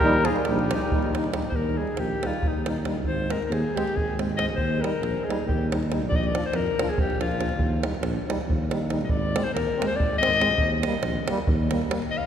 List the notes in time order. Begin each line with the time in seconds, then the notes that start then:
Already playing: G4
0.00 D#2 D#4 A#4, davul low
0.05 G3
0.13 davul high
0.24 F4 G#4, davul high
0.29 G3 D#4
0.36 davul high
0.45 A#1 G3 D#4 G4, davul high
0.49 D#4
0.59 davul high
0.71 G3 D#4, davul high
0.92 D#2 G3 D#4, davul low
1.03 davul high
1.15 G3 D#4, davul high
1.24 davul high
1.34 G3 D#4, davul high
1.42 davul high
1.49 C5, davul low
1.54 D#2 A#4
1.77 G3 D#4 G#4
1.87 davul high
1.97 A#1 G4, davul high
2.23 G3 D#4 F4, davul high
2.33 davul high
2.43 D#2, davul low
2.48 D#4
2.66 G3 D#4, davul high
2.76 davul high
2.85 G3 D#4, davul high
2.95 davul high
3.04 G#1 C5, davul low
3.30 G#3 C4 A#4, davul high
3.42 A#4, davul high
3.50 D#2 G#4, davul high
3.76 G#3 C4 G4, davul high
3.87 davul high
3.95 G#1 G#4, davul low
4.18 G#3 C4, davul high
4.29 davul high
4.37 G#3 C4 D#5, davul high
4.49 davul high
4.55 D#2 C5, davul low
4.81 G3 D#4 A#4, davul high
4.93 davul high
5.01 A#1, davul high
5.24 G#4
5.29 G3 D#4, davul high
5.46 D#2 G4, davul low
5.71 G3 D#4, davul high
5.83 davul high
5.92 G3 D#4, davul high
6.02 davul high
6.07 A#1 D5
6.12 D#5, davul low
6.24 D5, davul high
6.35 F3 D4, davul high
6.44 C5, davul high
6.53 F2 A#4, davul high
6.66 davul high
6.79 F3 D4, davul high
6.89 G#4, davul high
6.98 A#1 G4, davul low
7.10 davul high
7.20 F3 D4 F4, davul high
7.31 davul high
7.38 F3 D4, davul high
7.49 davul high
7.57 D#2, davul low
7.82 G3 D#4, davul high
7.95 davul high
8.01 A#1, davul high
8.28 G3 D#4, davul high
8.41 davul high
8.48 D#2, davul low
8.71 G3 D#4, davul high
8.90 G3 D#4, davul high
9.01 D#5, davul high
9.09 G#1 D5, davul low
9.35 G#3 C4, davul high
9.44 C5, davul high
9.52 D#2 A#4
9.57 davul high
9.77 G#3 C4
9.82 davul high
9.87 C5
9.91 davul high
9.96 G#1 D5, davul low
10.18 C4 D#5
10.23 G#3, davul high
10.34 davul high
10.41 G#3 C4, davul high
10.51 davul high
10.58 D#2, davul low
10.83 G3, davul high
10.88 A#3
10.92 davul high
11.02 A#1, davul high
11.28 G3 A#3, davul high
11.37 davul high
11.47 D#2, davul low
11.70 G3 A#3, davul high
11.82 davul high
11.90 G3 A#3, davul high
12.02 davul high
12.11 D#5
12.17 F5